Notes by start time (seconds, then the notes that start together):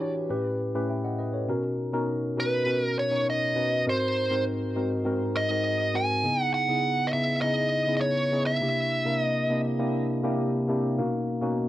Already playing: B4
0.00 E3 D4 F#4 G4 C#5
0.29 A2 C#4 E4 G4 B4
0.75 A2 C#4 E4 G4 B4
0.89 E5 G5
1.04 D#5 F#5
1.19 B4 D#5
1.33 A4 C#5
1.48 B2 C#4 D#4 F#4 A#4
1.93 B2 C#4 D#4 F#4 A#4
2.37 B2 C#4 D#4 F#4 A#4 B4
2.66 B2 C#4 D#4 F#4 A#4
2.83 A#4
2.99 C#5
3.11 B2 C#4 D#4 F#4 C#5
3.30 D#5
3.55 B2 C#4 D#4 F#4 B4
3.86 G#2 C4 D#4 F#4 A#4 C5
4.30 G#2 C4 D#4 F#4 A#4
4.75 G#2 C4 D#4 F#4 A#4
5.05 G#2 C4 D#4 F#4 A#4
5.36 D#5
5.50 G#2 C4 D#4 F#4 A#4
5.94 G#2 C4 D#4 F#4 A#4 G#5
6.23 C#3 B3 D#4 E4 G#4
6.42 F#5
6.54 F#5
6.68 C#3 B3 D#4 E4 G#4
7.07 D#5
7.13 C#3 B3 D#4 E4 G#4 E5
7.42 C#3 B3 D#4 E4 G#4 D#5
7.87 C#3 B3 D#4 E4 G#4
7.97 D#5
8.01 C#5
8.31 C#3 B3 D#4 E4 G#4
8.46 E5
8.61 C3 A#3 D4 E4 G4
9.05 C3 A#3 D4 E4 A#4
9.22 D#5
9.49 C3 A#3 D4 E4 G4
9.78 C3 A#3 D4 E4 G4
10.23 C3 A#3 D4 E4 G4
10.68 C3 A#3 D4 E4 G4
10.98 B2 A#3 C#4 D#4 F#4
11.41 B2 A#3 C#4 D#4 F#4